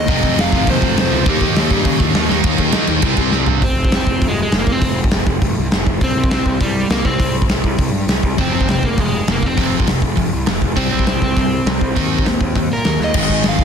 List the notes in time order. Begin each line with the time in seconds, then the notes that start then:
Already playing: D#5
0.08 F1 F2 C3 F3 G#3 C4 F4, kick, open hi-hat
0.23 F1, kick
0.37 F1 F5, snare, open hi-hat
0.52 G#1 F3 G#3 C4 F4, kick
0.67 D#2 C5, kick, open hi-hat
0.82 F1, kick
0.96 F1 F3 G#3 C4 F4, snare, open hi-hat
1.00 C5
1.10 C#2 F2 C3 F3
1.25 D#2 D#3 G3 A#3 D#4 G4, kick, open hi-hat
1.41 D#2, kick
1.56 D#2, snare, open hi-hat
1.70 G2 D#3 G3 A#3 D#4, kick
1.85 C#3, kick, open hi-hat
2.00 D#2, kick
2.14 D#2 D#3 G3 A#3 D#4, snare, open hi-hat
2.29 D#2 D#3 A#3 D#4, snare
2.43 D#2 D#3 G3 A#3 D#4, kick, crash
2.58 D#2, kick, crash
2.72 D#3 A#3 D#4, snare, crash
2.87 D#2, crash
3.02 C2 C3 G3 C4 E4, kick, crash
3.17 C2, kick, crash
3.32 C2 C3 G3 C4, snare
3.46 G2, floor tom
3.62 F1 C4, kick, open hi-hat
3.76 F1
3.85 kick
3.92 F1, snare, open hi-hat
3.97 C4
4.07 F1, kick
4.21 F1, kick, open hi-hat
4.28 G#3
4.42 G#3
4.52 F1, snare, open hi-hat
4.59 A#3
4.67 F1, kick
4.72 C4
4.81 F1, kick, open hi-hat
5.04 kick
5.11 F1, snare, open hi-hat
5.27 F1, kick
5.41 F1, kick, open hi-hat
5.58 C2
5.71 F1, snare, open hi-hat
5.86 F1, kick
6.01 C2 C4, kick, open hi-hat
6.16 C2
6.24 kick
6.31 C2 C4, snare, open hi-hat
6.45 C2, kick
6.61 C2 G3, kick, open hi-hat
6.89 C2 A#3, snare, open hi-hat
7.05 C2 C4, kick
7.19 C2, kick, open hi-hat
7.42 kick
7.47 C2, snare, open hi-hat
7.64 C2, kick
7.78 C2, kick, open hi-hat
7.92 G2
8.07 C2, snare, open hi-hat
8.23 C2, kick
8.38 F1 F2 C3 F3 C4, kick, open hi-hat
8.51 F1 C4
8.61 kick
8.66 F1 F2 C3, snare, open hi-hat
8.71 C4
8.83 F1 A#3, kick
8.97 F1 F2 C3 G#3, kick, open hi-hat
9.28 F1 F2 C3 A#3, snare, open hi-hat
9.42 F1, kick
9.46 C4
9.57 F1 F2 C3 F3, kick, open hi-hat
9.80 kick
9.86 F1 F2 C3, snare, open hi-hat
10.02 F1, kick
10.16 F1 F2 C3, kick, open hi-hat
10.33 C2
10.46 F1 F2 C3, snare, open hi-hat
10.62 F1, kick
10.76 C2 C3 G3 C4, kick, open hi-hat
10.92 C2 C4
10.99 kick
11.06 C2 C3 G3 C4, snare, open hi-hat
11.22 C2 C4, kick
11.36 C2 C3 G3, kick, open hi-hat
11.66 C2 C3 G3, snare, open hi-hat
11.81 C2, kick
11.95 D#2 D#3 A#3 D#4, kick, open hi-hat
12.18 kick
12.25 D#2 D#3 A#3, snare, open hi-hat
12.41 D#2, kick
12.55 D#2 D#3 A#3, kick, open hi-hat
12.70 A#2 A#4
12.85 D#2 D#3 A#3, snare, open hi-hat
13.00 D#2, snare
13.04 D#5
13.14 G#1 G#2 D#3 G#3, kick, crash
13.29 G#1, kick
13.44 G#1, snare, open hi-hat
13.49 F5
13.58 C2, kick